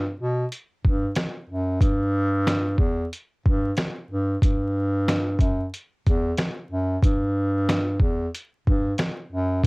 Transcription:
0.00 0.14 G2 loud
0.19 0.46 B2 loud
0.52 closed hi-hat medium
0.85 1.12 G2 medium
0.85 kick medium
1.16 snare loud
1.16 snare medium
1.16 closed hi-hat medium
1.49 1.76 F#2 medium
1.81 2.75 G2 loud
1.81 kick loud
1.81 closed hi-hat medium
2.47 snare loud
2.47 snare medium
2.47 closed hi-hat medium
2.78 3.06 E2 medium
2.78 kick medium
3.13 closed hi-hat medium
3.46 3.73 G2 medium
3.46 kick medium
3.77 snare loud
3.77 snare medium
3.77 closed hi-hat medium
4.10 4.37 G2 loud
4.42 5.36 G2 loud
4.42 kick loud
4.42 closed hi-hat medium
5.08 snare loud
5.08 snare medium
5.08 closed hi-hat medium
5.39 5.67 F#2 medium
5.39 kick medium
5.39 closed hi-hat medium
5.74 closed hi-hat medium
6.06 6.34 E2 loud
6.06 kick medium
6.06 closed hi-hat soft
6.37 snare loud
6.37 snare medium
6.37 closed hi-hat medium
6.71 6.98 F#2 loud
7.03 7.97 G2 loud
7.03 kick loud
7.03 closed hi-hat medium
7.69 snare loud
7.69 closed hi-hat medium
8.00 8.28 E2 medium
8.00 kick medium
8.35 closed hi-hat medium
8.67 8.94 G2 medium
8.67 kick medium
8.98 snare loud
8.98 snare medium
8.98 closed hi-hat medium
9.32 9.59 F#2 loud
9.63 kick loud

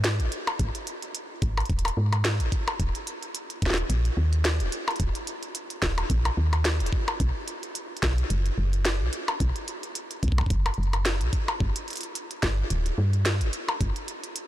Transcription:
0.00 0.21 G#2 medium
0.04 snare loud
0.04 closed hi-hat medium
0.20 0.28 G#1 loud
0.20 closed hi-hat soft
0.32 closed hi-hat medium
0.47 closed hi-hat soft
0.47 percussion blips medium
0.59 0.70 G#1 loud
0.59 kick loud
0.59 closed hi-hat medium
0.75 closed hi-hat soft
0.87 closed hi-hat medium
1.02 closed hi-hat soft
1.15 closed hi-hat medium
1.42 1.62 G#1 medium
1.42 kick loud
1.42 closed hi-hat medium
1.57 closed hi-hat soft
1.57 percussion blips medium
1.60 closed hi-hat soft
1.66 closed hi-hat soft
1.70 1.90 D#1 medium
1.70 kick loud
1.70 closed hi-hat soft
1.79 closed hi-hat medium
1.85 closed hi-hat soft
1.85 percussion blips medium
1.88 closed hi-hat medium
1.97 2.42 G#2 medium
2.13 closed hi-hat soft
2.13 percussion blips medium
2.25 snare loud
2.25 closed hi-hat medium
2.40 2.49 G#1 loud
2.40 closed hi-hat soft
2.52 kick loud
2.52 closed hi-hat medium
2.68 closed hi-hat soft
2.68 percussion blips medium
2.80 2.90 D#1 loud
2.80 kick loud
2.80 closed hi-hat medium
2.95 closed hi-hat soft
3.07 closed hi-hat medium
3.23 closed hi-hat soft
3.35 closed hi-hat medium
3.50 closed hi-hat soft
3.62 3.82 D#1 medium
3.62 kick loud
3.62 snare medium
3.62 closed hi-hat medium
3.70 snare medium
3.74 snare loud
3.74 closed hi-hat soft
3.90 4.10 A#1 medium
3.90 closed hi-hat medium
4.05 closed hi-hat soft
4.17 4.62 D#2 medium
4.33 closed hi-hat soft
4.45 snare loud
4.45 closed hi-hat medium
4.60 4.69 D#1 loud
4.60 closed hi-hat soft
4.72 closed hi-hat medium
4.88 closed hi-hat soft
4.88 percussion blips medium
4.91 closed hi-hat soft
4.96 closed hi-hat soft
5.00 5.11 D#1 loud
5.00 kick loud
5.00 closed hi-hat medium
5.15 closed hi-hat soft
5.27 closed hi-hat medium
5.43 closed hi-hat soft
5.55 closed hi-hat medium
5.70 closed hi-hat soft
5.82 6.03 D#1 medium
5.82 kick loud
5.82 snare loud
5.82 closed hi-hat medium
5.98 closed hi-hat soft
5.98 percussion blips medium
6.10 6.30 A#1 medium
6.10 kick loud
6.10 closed hi-hat medium
6.25 closed hi-hat soft
6.25 percussion blips medium
6.37 6.82 D#2 medium
6.53 closed hi-hat soft
6.53 percussion blips soft
6.65 snare loud
6.65 closed hi-hat medium
6.80 6.89 D#1 loud
6.80 closed hi-hat soft
6.86 closed hi-hat medium
6.93 kick loud
7.08 closed hi-hat soft
7.08 percussion blips medium
7.20 7.31 B1 loud
7.20 kick loud
7.20 closed hi-hat medium
7.48 closed hi-hat medium
7.63 closed hi-hat soft
7.75 closed hi-hat medium
7.97 closed hi-hat soft
8.03 8.23 B1 medium
8.03 kick loud
8.03 snare loud
8.03 closed hi-hat medium
8.18 closed hi-hat soft
8.30 8.50 F#1 medium
8.30 closed hi-hat medium
8.46 closed hi-hat soft
8.58 9.02 F#1 medium
8.73 closed hi-hat soft
8.85 snare loud
8.85 closed hi-hat medium
9.01 9.09 B1 loud
9.13 closed hi-hat medium
9.28 closed hi-hat soft
9.28 percussion blips medium
9.40 9.51 B1 loud
9.40 kick loud
9.40 closed hi-hat medium
9.56 closed hi-hat soft
9.68 closed hi-hat medium
9.83 closed hi-hat soft
9.95 closed hi-hat medium
10.11 closed hi-hat soft
10.23 10.43 B1 medium
10.23 kick soft
10.23 closed hi-hat medium
10.28 kick medium
10.32 kick medium
10.38 kick medium
10.38 closed hi-hat soft
10.38 percussion blips medium
10.41 kick medium
10.46 kick loud
10.50 10.71 F#1 medium
10.50 kick loud
10.50 closed hi-hat medium
10.66 closed hi-hat soft
10.66 percussion blips medium
10.74 closed hi-hat soft
10.78 11.22 F#1 medium
10.83 closed hi-hat soft
10.93 closed hi-hat soft
10.93 percussion blips soft
11.05 snare loud
11.05 closed hi-hat medium
11.21 11.29 B1 loud
11.21 closed hi-hat soft
11.33 kick loud
11.33 closed hi-hat medium
11.48 closed hi-hat soft
11.48 percussion blips medium
11.60 11.71 G1 loud
11.60 kick loud
11.76 closed hi-hat medium
11.88 closed hi-hat soft
11.90 closed hi-hat soft
11.93 closed hi-hat soft
11.96 closed hi-hat soft
11.96 closed hi-hat medium
12.01 closed hi-hat medium
12.03 closed hi-hat soft
12.15 closed hi-hat medium
12.31 closed hi-hat soft
12.43 12.63 G1 medium
12.43 kick loud
12.43 snare loud
12.43 closed hi-hat medium
12.70 12.91 D1 medium
12.70 closed hi-hat medium
12.86 closed hi-hat soft
12.98 13.42 G2 medium
13.13 closed hi-hat soft
13.26 snare loud
13.26 closed hi-hat medium
13.41 13.49 G1 loud
13.41 closed hi-hat soft
13.53 closed hi-hat medium
13.69 closed hi-hat soft
13.69 percussion blips medium
13.81 13.91 G1 loud
13.81 kick loud
13.81 closed hi-hat medium
13.96 closed hi-hat soft
14.08 closed hi-hat medium
14.24 closed hi-hat soft
14.36 closed hi-hat medium

